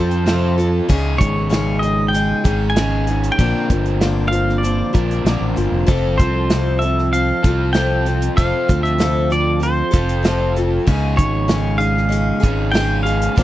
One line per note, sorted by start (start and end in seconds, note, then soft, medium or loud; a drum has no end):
0.00 0.80 F2 medium
0.00 0.25 F3 soft
0.00 0.26 C4 medium
0.00 0.26 F4 medium
0.00 0.26 A4 medium
0.00 0.54 C5 medium
0.11 closed hi-hat soft
0.26 0.57 F2 medium
0.26 0.58 C3 medium
0.26 0.58 F3 medium
0.26 0.58 C4 medium
0.26 0.57 F4 medium
0.26 0.57 A4 medium
0.26 snare loud
0.26 closed hi-hat medium
0.58 0.88 F3 soft
0.58 0.89 C4 medium
0.58 0.89 F4 medium
0.58 0.89 A4 medium
0.58 closed hi-hat medium
0.89 1.21 C#2 medium
0.89 1.20 C#3 medium
0.89 1.20 G#3 medium
0.89 1.20 C#4 medium
0.89 1.20 D#4 medium
0.89 1.19 G#4 loud
0.89 kick medium
0.89 closed hi-hat medium
1.18 2.32 G#1 medium
1.18 1.49 C#4 soft
1.18 1.50 D#4 soft
1.18 1.49 G#4 medium
1.18 1.83 C#5 medium
1.18 kick medium
1.18 closed hi-hat medium
1.49 1.81 C#3 medium
1.49 1.82 G#3 medium
1.49 1.82 C#4 medium
1.49 1.82 D#4 medium
1.49 1.81 G#4 medium
1.49 snare medium
1.49 closed hi-hat medium
1.79 2.13 D#4 soft
1.79 2.13 G#4 soft
1.79 2.10 D#5 medium
1.79 closed hi-hat medium
1.85 2.13 C#4 soft
2.08 2.69 G5 medium
2.13 2.44 G#3 medium
2.13 2.45 C#4 medium
2.13 2.44 D#4 medium
2.13 2.43 G#4 medium
2.13 closed hi-hat medium
2.44 3.29 G#1 medium
2.44 2.74 C#3 medium
2.44 2.75 G#3 medium
2.44 2.75 C#4 soft
2.44 2.76 D#4 medium
2.44 2.75 G#4 medium
2.44 kick medium
2.44 closed hi-hat medium
2.70 3.31 G#5 loud
2.76 3.07 C#3 medium
2.76 3.07 G#3 medium
2.76 3.07 C#4 medium
2.76 3.08 D#4 medium
2.76 3.07 G#4 medium
2.76 snare loud
2.76 closed hi-hat medium
3.07 3.40 C#4 soft
3.07 3.39 D#4 soft
3.07 3.39 G#4 medium
3.07 closed hi-hat medium
3.24 closed hi-hat medium
3.32 4.28 G5 medium
3.39 3.53 A#1 medium
3.39 3.70 A#2 medium
3.39 3.70 D3 medium
3.39 3.70 F3 medium
3.39 3.70 A#3 medium
3.39 3.70 C4 medium
3.39 4.93 D4 medium
3.39 3.69 F4 medium
3.39 4.93 A#4 loud
3.39 kick medium
3.39 closed hi-hat medium
3.70 4.82 G1 medium
3.70 4.00 F3 soft
3.70 4.01 A#3 soft
3.70 4.01 C4 soft
3.70 4.01 F4 medium
3.70 kick medium
3.70 closed hi-hat medium
3.86 closed hi-hat medium
4.01 4.32 A#2 medium
4.01 4.32 D3 medium
4.01 4.32 F3 medium
4.01 4.32 A#3 medium
4.01 4.31 C4 medium
4.01 4.30 F4 medium
4.01 snare medium
4.01 closed hi-hat medium
4.28 4.62 F4 soft
4.28 4.62 F5 medium
4.32 4.62 F3 soft
4.32 4.62 A#3 soft
4.32 4.63 C4 soft
4.32 closed hi-hat medium
4.49 snare soft
4.58 5.50 D5 medium
4.63 4.94 F3 medium
4.63 4.93 A#3 medium
4.63 4.94 C4 medium
4.63 4.92 F4 medium
4.63 closed hi-hat medium
4.93 5.22 A#1 medium
4.93 5.24 D3 medium
4.93 5.25 F3 soft
4.93 5.25 A#3 soft
4.93 5.25 C4 soft
4.93 5.24 D4 medium
4.93 5.24 F4 medium
4.93 5.23 A#4 medium
4.93 kick medium
4.93 closed hi-hat medium
4.97 5.23 A#2 medium
5.11 closed hi-hat medium
5.25 5.39 A#1 medium
5.25 5.57 A#2 medium
5.25 5.57 D3 medium
5.25 5.57 F3 medium
5.25 5.56 A#3 medium
5.25 5.55 C4 medium
5.25 5.86 D4 medium
5.25 5.55 F4 medium
5.25 5.87 A#4 medium
5.25 snare loud
5.25 closed hi-hat medium
5.41 5.55 A1 medium
5.56 5.70 G1 medium
5.56 5.85 F3 soft
5.56 5.86 A#3 soft
5.56 5.86 C4 medium
5.56 5.86 F4 medium
5.56 closed hi-hat medium
5.72 5.86 F1 medium
5.86 6.20 F1 medium
5.86 6.18 F2 medium
5.86 6.18 C3 medium
5.86 6.18 F3 medium
5.86 6.18 C4 medium
5.86 6.18 F4 medium
5.86 6.17 A4 medium
5.86 kick loud
5.86 closed hi-hat medium
6.18 7.31 C2 medium
6.18 6.49 F3 soft
6.18 6.50 C4 soft
6.18 6.49 F4 soft
6.18 6.50 A4 soft
6.18 6.82 C5 medium
6.18 kick medium
6.18 closed hi-hat medium
6.50 6.81 F2 medium
6.50 6.81 C3 medium
6.50 6.81 F3 medium
6.50 6.82 C4 medium
6.50 6.81 F4 medium
6.50 6.82 A4 medium
6.50 snare loud
6.50 closed hi-hat medium
6.79 7.12 E5 medium
6.79 closed hi-hat medium
6.83 7.13 C4 soft
6.83 7.13 F4 soft
6.83 7.13 A4 soft
6.98 snare soft
7.13 7.44 F3 medium
7.13 7.45 C4 medium
7.13 7.44 F4 medium
7.13 7.44 A4 medium
7.13 7.71 F5 medium
7.13 closed hi-hat medium
7.44 8.28 C2 medium
7.44 7.74 F3 medium
7.44 7.73 C4 soft
7.44 7.74 F4 medium
7.44 7.74 A4 medium
7.44 kick medium
7.44 closed hi-hat medium
7.73 8.06 F2 medium
7.73 8.06 C3 medium
7.73 8.06 F3 medium
7.73 8.06 C4 medium
7.73 8.06 F4 medium
7.73 8.05 A4 medium
7.73 8.36 G5 loud
7.73 snare loud
7.73 closed hi-hat medium
8.06 8.37 F3 soft
8.06 8.37 C4 soft
8.06 8.38 F4 soft
8.06 8.37 A4 medium
8.06 closed hi-hat medium
8.22 closed hi-hat medium
8.37 8.52 F1 medium
8.37 8.69 F2 medium
8.37 8.69 C3 medium
8.37 8.69 F3 medium
8.37 8.69 C4 medium
8.37 8.68 F4 medium
8.37 8.67 A4 medium
8.37 8.83 F5 loud
8.37 kick medium
8.37 closed hi-hat medium
8.68 9.81 D2 medium
8.68 8.97 F3 soft
8.68 8.98 C4 soft
8.68 8.98 F4 soft
8.68 8.99 A4 medium
8.68 kick medium
8.68 closed hi-hat medium
8.83 9.32 E5 medium
8.83 closed hi-hat medium
8.98 9.30 F2 medium
8.98 9.31 C3 medium
8.98 9.30 F3 medium
8.98 9.29 C4 medium
8.98 9.29 F4 medium
8.98 9.28 A4 medium
8.98 snare loud
8.98 closed hi-hat medium
9.30 9.58 F3 soft
9.30 9.59 C4 soft
9.30 9.59 F4 soft
9.30 9.60 A4 soft
9.30 9.64 D5 medium
9.30 closed hi-hat medium
9.59 9.91 F3 soft
9.59 9.91 C4 medium
9.59 9.91 F4 medium
9.59 9.90 A4 medium
9.59 10.52 C5 medium
9.59 closed hi-hat medium
9.91 10.78 F1 medium
9.91 10.23 F3 medium
9.91 10.23 C4 soft
9.91 10.23 F4 medium
9.91 10.23 A4 medium
9.91 kick medium
9.91 closed hi-hat medium
10.09 closed hi-hat medium
10.23 10.55 F2 medium
10.23 10.56 C3 medium
10.23 10.56 F3 medium
10.23 10.56 C4 medium
10.23 10.56 F4 medium
10.23 10.55 A4 medium
10.23 snare loud
10.23 closed hi-hat medium
10.56 10.86 F3 medium
10.56 10.87 C4 medium
10.56 10.87 F4 medium
10.56 10.87 A4 medium
10.56 closed hi-hat medium
10.87 11.20 C#2 medium
10.87 11.18 C#3 medium
10.87 11.18 G#3 medium
10.87 11.17 C#4 medium
10.87 11.16 D#4 medium
10.87 11.15 G#4 loud
10.87 kick medium
10.87 closed hi-hat medium
11.16 12.31 G#1 medium
11.16 11.47 C#4 soft
11.16 11.48 D#4 soft
11.16 11.48 G#4 medium
11.16 11.82 C#5 medium
11.16 kick medium
11.16 closed hi-hat medium
11.48 11.80 C#3 medium
11.48 11.80 G#3 medium
11.48 11.79 C#4 medium
11.48 11.77 D#4 medium
11.48 11.77 G#4 medium
11.48 snare loud
11.48 closed hi-hat medium
11.78 12.08 C#4 soft
11.78 12.09 D#4 soft
11.78 12.10 G#4 soft
11.78 12.76 F5 loud
11.78 closed hi-hat medium
11.97 snare soft
12.09 12.42 G#3 medium
12.09 12.42 C#4 medium
12.09 12.40 D#4 medium
12.09 12.39 G#4 medium
12.09 closed hi-hat medium
12.40 13.27 G#1 medium
12.40 12.72 C#4 soft
12.40 12.74 D#4 medium
12.40 12.73 G#4 medium
12.40 kick medium
12.40 closed hi-hat medium
12.45 12.72 C#3 medium
12.45 12.73 G#3 medium
12.72 13.05 C#3 medium
12.72 13.05 G#3 medium
12.72 13.05 C#4 medium
12.72 13.04 D#4 medium
12.72 13.04 G#4 medium
12.72 13.03 G5 loud
12.72 snare loud
12.72 closed hi-hat medium
13.03 13.37 C#4 soft
13.03 13.37 D#4 medium
13.03 13.37 G#4 soft
13.03 13.43 F5 medium
13.03 closed hi-hat medium
13.22 closed hi-hat medium
13.36 13.43 A#1 medium
13.36 13.43 A#2 medium
13.36 13.43 D3 medium
13.36 13.43 F3 medium
13.36 13.43 A#3 medium
13.36 13.43 C4 medium
13.36 13.43 D4 medium
13.36 13.43 F4 medium
13.36 13.43 A#4 medium
13.36 kick loud
13.36 closed hi-hat medium